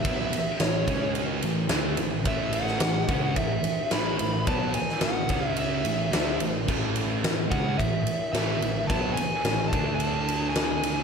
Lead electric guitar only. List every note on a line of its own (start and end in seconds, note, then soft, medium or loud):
0.03 0.61 E5 medium
0.60 1.11 C#5 medium
2.28 2.53 E5 medium
2.54 3.37 F#5 medium
3.37 3.94 E5 loud
3.93 4.48 B5 loud
4.48 4.74 A5 loud
4.75 5.03 G#5 medium
5.04 5.48 F#5 loud
5.48 5.58 E5 loud
5.59 6.37 E5 medium
7.51 7.77 F#5 loud
7.78 8.31 E5 medium
8.33 8.90 E5 loud
8.87 9.13 A5 loud
9.14 9.68 G#5 loud
9.68 9.94 A5 loud
9.95 10.49 A5 loud
10.50 11.03 G#5 loud